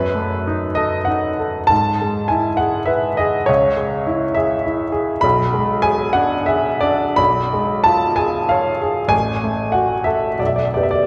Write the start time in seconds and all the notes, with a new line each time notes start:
Already playing: F#2 B4
0.15 A3
0.47 D#4
0.75 A4 D#5
1.05 D#4 F#5
1.40 A4
1.67 G#2 A5
2.01 G#3
2.28 E4 G#5
2.57 G#4 F#5
2.86 B4 E5
3.17 G#4 D#5
3.46 C#2 C#5
3.77 G#3
4.07 E4
4.34 G#4 E5
4.66 E4
4.92 G#4
5.21 B1 B5
5.54 G#3
5.82 G#4 G#5
6.13 D4 F#5
6.46 G#4 E5
6.81 D4 D5
7.16 B1 B5
7.53 G#3
7.84 F4 A5
8.16 G#4 G#5
8.49 C#5 F5
8.82 G#4
9.08 A1 G#5
9.44 A3
9.72 F#4 F#5
10.04 A4 E5
10.39 B1 D5
10.47 E5
10.56 D5
10.65 E5
10.74 B3 G4 D5
10.83 E5
10.91 D5